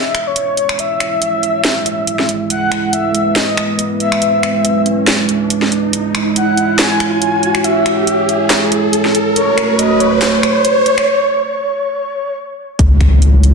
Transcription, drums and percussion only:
0.15 finger snap medium
0.15 closed hi-hat medium
0.36 closed hi-hat medium
0.57 closed hi-hat medium
0.69 finger snap medium
0.79 closed hi-hat medium
1.00 finger snap medium
1.00 closed hi-hat medium
1.22 closed hi-hat medium
1.43 closed hi-hat medium
1.64 snare loud
1.64 closed hi-hat medium
1.86 closed hi-hat medium
2.07 closed hi-hat medium
2.19 snare soft
2.29 closed hi-hat medium
2.50 closed hi-hat medium
2.72 finger snap medium
2.72 closed hi-hat soft
2.93 closed hi-hat medium
3.15 closed hi-hat soft
3.36 snare loud
3.36 closed hi-hat medium
3.57 finger snap medium
3.57 closed hi-hat soft
3.79 closed hi-hat medium
4.00 closed hi-hat soft
4.12 finger snap medium
4.22 closed hi-hat medium
4.43 finger snap medium
4.43 closed hi-hat soft
4.65 closed hi-hat medium
4.86 closed hi-hat soft
5.07 snare loud
5.07 closed hi-hat medium
5.29 closed hi-hat soft
5.50 closed hi-hat medium
5.62 snare soft
5.72 closed hi-hat soft
5.93 closed hi-hat medium
6.15 finger snap medium
6.15 closed hi-hat soft
6.36 closed hi-hat medium
6.57 closed hi-hat medium
6.79 snare loud
6.79 clap medium
6.79 closed hi-hat medium
7.00 finger snap medium
7.00 closed hi-hat medium
7.22 closed hi-hat medium
7.43 closed hi-hat medium
7.55 finger snap medium
7.64 closed hi-hat medium
7.86 finger snap medium
7.86 closed hi-hat medium
8.07 closed hi-hat medium
8.29 closed hi-hat medium
8.50 snare loud
8.50 clap medium
8.50 closed hi-hat medium
8.72 closed hi-hat medium
8.93 closed hi-hat medium
9.05 snare soft
9.15 closed hi-hat medium
9.36 closed hi-hat medium
9.58 finger snap medium
9.58 closed hi-hat medium
9.79 closed hi-hat medium
10.00 closed hi-hat medium
10.22 snare loud
10.22 clap medium
10.22 closed hi-hat medium
10.43 finger snap medium
10.43 closed hi-hat medium
10.65 closed hi-hat medium
10.86 closed hi-hat medium
10.98 finger snap medium
12.79 kick loud
12.79 closed hi-hat medium
13.01 finger snap medium
13.01 kick loud
13.01 closed hi-hat medium
13.22 closed hi-hat medium
13.43 closed hi-hat medium

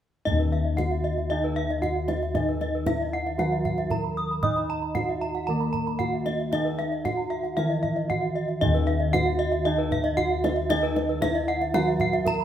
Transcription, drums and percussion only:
0.27 kendang low soft
0.40 kendang slap soft
0.78 kendang high soft
0.78 kendang low soft
0.91 kendang slap soft
1.18 kendang slap soft
1.70 kendang slap soft
1.83 kendang low soft
2.08 kendang high soft
2.23 kendang slap soft
2.35 kendang high soft
2.35 kendang low soft
2.48 kendang slap soft
2.61 kendang high soft
2.86 kendang high soft
2.86 kendang low soft
3.00 kendang slap soft
3.27 kendang slap soft
3.39 kendang high soft
3.65 kendang low soft
3.78 kendang slap soft
3.91 kendang low soft
4.43 kendang low soft
4.56 kendang slap soft
4.95 kendang high soft
4.95 kendang low soft
5.08 kendang slap soft
5.35 kendang slap soft
5.74 kendang low soft
5.87 kendang slap soft
6.00 kendang low soft
6.26 kendang high soft
6.40 kendang slap soft
6.52 kendang high soft
6.52 kendang low soft
6.66 kendang slap soft
6.80 kendang high soft
6.92 kendang slap soft
7.05 kendang high soft
7.05 kendang low soft
7.18 kendang slap soft
7.45 kendang slap soft
7.58 kendang high soft
7.71 kendang slap soft
7.84 kendang low soft
7.97 kendang slap soft
8.10 kendang low soft
8.22 kendang slap soft
8.49 kendang slap soft
8.62 kendang low soft
8.75 kendang slap soft
9.14 kendang high soft
9.14 kendang low soft
9.27 kendang slap soft
9.53 kendang slap soft
9.92 kendang low soft
10.04 kendang slap soft
10.18 kendang low soft
10.44 kendang high soft
10.70 kendang high soft
10.70 kendang low soft
10.84 kendang slap soft
10.96 kendang high soft
11.22 kendang high soft
11.22 kendang low soft
11.35 kendang slap soft
11.62 kendang slap soft
11.74 kendang high soft
12.00 kendang low soft
12.13 kendang slap soft
12.27 kendang low soft

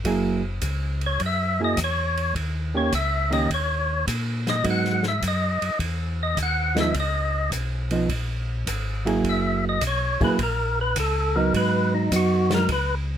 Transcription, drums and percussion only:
0.05 kick soft
0.05 ride medium
0.62 kick soft
0.62 hi-hat pedal medium
0.62 ride medium
1.01 ride soft
1.20 kick soft
1.20 ride medium
1.77 kick soft
1.77 hi-hat pedal medium
1.77 ride medium
2.17 ride soft
2.35 kick soft
2.35 ride medium
2.92 kick soft
2.92 hi-hat pedal medium
2.92 ride medium
3.32 ride medium
3.50 kick soft
3.50 ride medium
4.07 kick soft
4.07 hi-hat pedal medium
4.07 ride medium
4.47 snare soft
4.47 ride soft
4.64 kick soft
4.64 ride medium
4.85 snare soft
5.03 snare soft
5.22 kick soft
5.22 hi-hat pedal soft
5.22 ride medium
5.62 ride medium
5.79 kick soft
5.79 ride medium
6.37 kick soft
6.37 hi-hat pedal soft
6.37 ride medium
6.76 snare medium
6.76 ride soft
6.94 kick soft
6.94 ride medium
7.52 kick soft
7.52 hi-hat pedal medium
7.52 ride medium
7.91 ride medium
8.09 kick soft
8.09 ride medium
8.67 kick soft
8.67 hi-hat pedal medium
8.67 ride medium
9.07 ride soft
9.24 kick soft
9.24 ride medium
9.81 kick soft
9.81 hi-hat pedal medium
9.81 ride medium
10.21 kick medium
10.21 ride medium
10.39 kick soft
10.39 ride medium
10.96 kick soft
10.96 hi-hat pedal medium
10.96 ride medium
11.54 kick soft
11.54 ride medium
12.11 kick soft
12.11 hi-hat pedal medium
12.11 ride medium
12.51 snare medium
12.51 ride medium
12.69 kick soft
12.69 ride medium

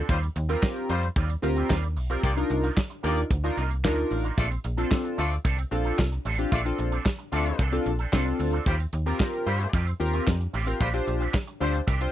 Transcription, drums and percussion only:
0.09 kick loud
0.09 closed hi-hat medium
0.23 closed hi-hat medium
0.36 closed hi-hat medium
0.49 closed hi-hat medium
0.63 kick loud
0.63 snare loud
0.63 clap medium
0.76 closed hi-hat medium
0.90 closed hi-hat medium
1.03 closed hi-hat medium
1.16 kick loud
1.16 closed hi-hat loud
1.30 closed hi-hat medium
1.43 closed hi-hat medium
1.56 closed hi-hat medium
1.70 kick loud
1.70 snare loud
1.70 clap medium
1.84 closed hi-hat medium
1.96 open hi-hat medium
2.10 closed hi-hat medium
2.23 kick loud
2.23 closed hi-hat loud
2.37 closed hi-hat medium
2.50 closed hi-hat medium
2.64 closed hi-hat medium
2.77 kick loud
2.77 snare loud
2.77 clap medium
2.91 closed hi-hat medium
3.04 closed hi-hat medium
3.17 closed hi-hat medium
3.31 kick loud
3.31 closed hi-hat loud
3.44 closed hi-hat medium
3.58 closed hi-hat medium
3.71 closed hi-hat medium
3.85 kick loud
3.85 snare loud
3.85 clap medium
3.98 closed hi-hat soft
4.11 open hi-hat medium
4.24 closed hi-hat medium
4.38 kick loud
4.38 closed hi-hat medium
4.51 closed hi-hat medium
4.64 closed hi-hat medium
4.78 closed hi-hat medium
4.91 kick loud
4.91 snare loud
4.91 clap medium
5.05 closed hi-hat medium
5.18 closed hi-hat medium
5.32 closed hi-hat medium
5.45 kick loud
5.45 closed hi-hat loud
5.58 closed hi-hat medium
5.72 closed hi-hat medium
5.85 closed hi-hat medium
5.99 kick loud
5.99 snare loud
5.99 clap medium
6.12 closed hi-hat soft
6.25 open hi-hat medium
6.39 closed hi-hat medium
6.52 kick loud
6.52 closed hi-hat loud
6.66 closed hi-hat medium
6.79 closed hi-hat medium
6.92 closed hi-hat medium
7.06 kick loud
7.06 snare loud
7.06 clap medium
7.19 closed hi-hat medium
7.33 closed hi-hat medium
7.46 closed hi-hat medium
7.59 kick loud
7.59 closed hi-hat loud
7.73 closed hi-hat medium
7.86 closed hi-hat medium
7.99 closed hi-hat medium
8.13 kick loud
8.13 snare loud
8.13 clap medium
8.27 closed hi-hat soft
8.39 open hi-hat medium
8.53 closed hi-hat medium
8.66 kick loud
8.66 closed hi-hat medium
8.80 closed hi-hat medium
8.93 closed hi-hat medium
9.07 closed hi-hat medium
9.20 kick loud
9.20 snare loud
9.20 clap medium
9.34 closed hi-hat medium
9.47 closed hi-hat medium
9.60 closed hi-hat medium
9.73 kick loud
9.73 closed hi-hat loud
9.87 closed hi-hat medium
10.00 closed hi-hat medium
10.13 closed hi-hat medium
10.27 kick loud
10.27 snare loud
10.27 clap medium
10.41 closed hi-hat soft
10.54 open hi-hat medium
10.67 closed hi-hat soft
10.81 kick loud
10.81 closed hi-hat medium
10.94 closed hi-hat medium
11.07 closed hi-hat medium
11.20 closed hi-hat medium
11.34 kick loud
11.34 snare loud
11.34 clap medium
11.48 closed hi-hat medium
11.61 closed hi-hat medium
11.74 closed hi-hat medium
11.88 kick loud
11.88 closed hi-hat medium
12.01 closed hi-hat medium

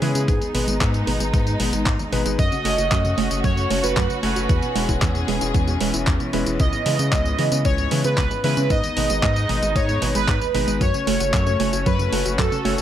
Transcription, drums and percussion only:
0.02 open hi-hat medium
0.15 closed hi-hat medium
0.15 tambourine medium
0.28 kick loud
0.28 closed hi-hat medium
0.28 tambourine soft
0.42 closed hi-hat soft
0.42 tambourine soft
0.55 open hi-hat loud
0.68 closed hi-hat medium
0.68 tambourine medium
0.81 kick loud
0.81 clap loud
0.81 closed hi-hat medium
0.81 tambourine soft
0.94 closed hi-hat soft
0.94 tambourine soft
1.07 open hi-hat medium
1.20 closed hi-hat medium
1.20 tambourine medium
1.34 kick loud
1.34 closed hi-hat medium
1.34 tambourine soft
1.47 closed hi-hat soft
1.47 tambourine soft
1.60 open hi-hat loud
1.73 closed hi-hat medium
1.73 tambourine medium
1.86 kick loud
1.86 clap loud
1.86 closed hi-hat medium
1.86 tambourine soft
1.99 closed hi-hat soft
1.99 tambourine soft
2.13 open hi-hat medium
2.26 closed hi-hat medium
2.26 tambourine medium
2.39 kick loud
2.39 closed hi-hat soft
2.39 tambourine soft
2.52 closed hi-hat soft
2.52 tambourine soft
2.65 open hi-hat loud
2.78 closed hi-hat medium
2.78 tambourine medium
2.92 kick loud
2.92 clap loud
2.92 closed hi-hat medium
2.92 tambourine soft
3.05 closed hi-hat soft
3.05 tambourine soft
3.18 open hi-hat medium
3.31 closed hi-hat medium
3.31 tambourine medium
3.44 kick loud
3.44 closed hi-hat medium
3.44 tambourine soft
3.57 closed hi-hat soft
3.57 tambourine soft
3.71 open hi-hat loud
3.84 closed hi-hat medium
3.84 tambourine medium
3.97 kick loud
3.97 clap loud
3.97 closed hi-hat medium
3.97 tambourine soft
4.10 closed hi-hat soft
4.10 tambourine soft
4.23 open hi-hat medium
4.36 closed hi-hat medium
4.36 tambourine medium
4.49 kick loud
4.49 closed hi-hat soft
4.49 tambourine medium
4.62 closed hi-hat soft
4.62 tambourine soft
4.76 open hi-hat loud
4.89 kick medium
4.89 closed hi-hat medium
4.89 tambourine medium
5.02 kick loud
5.02 clap loud
5.02 closed hi-hat medium
5.02 tambourine medium
5.15 closed hi-hat soft
5.15 tambourine soft
5.28 open hi-hat medium
5.41 closed hi-hat medium
5.41 tambourine medium
5.54 kick loud
5.54 closed hi-hat medium
5.54 tambourine medium
5.68 closed hi-hat soft
5.68 tambourine soft
5.81 open hi-hat loud
5.94 closed hi-hat soft
5.94 tambourine medium
6.07 kick loud
6.07 clap loud
6.07 closed hi-hat soft
6.07 tambourine medium
6.20 closed hi-hat soft
6.20 tambourine soft
6.33 open hi-hat medium
6.46 closed hi-hat soft
6.46 tambourine medium
6.60 kick loud
6.60 closed hi-hat soft
6.60 tambourine soft
6.73 closed hi-hat soft
6.73 tambourine soft
6.86 open hi-hat loud
6.99 closed hi-hat medium
6.99 tambourine medium
7.12 kick loud
7.12 clap loud
7.12 closed hi-hat medium
7.12 tambourine medium
7.25 closed hi-hat soft
7.25 tambourine soft
7.39 open hi-hat medium
7.52 closed hi-hat medium
7.52 tambourine medium
7.65 kick loud
7.65 closed hi-hat soft
7.65 tambourine medium
7.78 closed hi-hat soft
7.78 tambourine soft
7.91 open hi-hat loud
8.04 closed hi-hat soft
8.04 tambourine medium
8.18 kick loud
8.18 clap loud
8.18 closed hi-hat medium
8.18 tambourine medium
8.31 closed hi-hat soft
8.31 tambourine soft
8.44 open hi-hat medium
8.57 closed hi-hat medium
8.57 tambourine medium
8.70 kick loud
8.70 closed hi-hat medium
8.70 tambourine soft
8.84 closed hi-hat soft
8.84 tambourine soft
8.97 open hi-hat loud
9.10 closed hi-hat medium
9.10 tambourine medium
9.23 kick loud
9.23 clap loud
9.23 closed hi-hat medium
9.23 tambourine medium
9.36 closed hi-hat soft
9.36 tambourine soft
9.49 open hi-hat medium
9.63 closed hi-hat medium
9.63 tambourine medium
9.76 kick loud
9.76 closed hi-hat medium
9.76 tambourine soft
9.89 closed hi-hat soft
9.89 tambourine soft
10.02 open hi-hat loud
10.15 closed hi-hat medium
10.15 tambourine medium
10.28 kick loud
10.28 clap loud
10.28 closed hi-hat medium
10.28 tambourine medium
10.41 closed hi-hat soft
10.41 tambourine soft
10.55 open hi-hat medium
10.68 closed hi-hat medium
10.68 tambourine medium
10.81 kick loud
10.81 closed hi-hat medium
10.81 tambourine medium
10.94 closed hi-hat soft
10.94 tambourine soft
11.07 open hi-hat loud
11.20 closed hi-hat medium
11.20 tambourine medium
11.34 kick loud
11.34 clap loud
11.34 closed hi-hat medium
11.34 tambourine medium
11.47 closed hi-hat soft
11.47 tambourine soft
11.60 open hi-hat loud
11.73 closed hi-hat medium
11.73 tambourine medium
11.86 kick loud
11.86 closed hi-hat medium
11.86 tambourine medium
11.99 closed hi-hat soft
11.99 tambourine soft
12.13 open hi-hat loud
12.26 closed hi-hat medium
12.26 tambourine medium
12.39 kick loud
12.39 clap loud
12.39 closed hi-hat medium
12.39 tambourine medium
12.52 closed hi-hat soft
12.52 tambourine soft
12.65 open hi-hat medium
12.78 closed hi-hat medium
12.78 tambourine medium

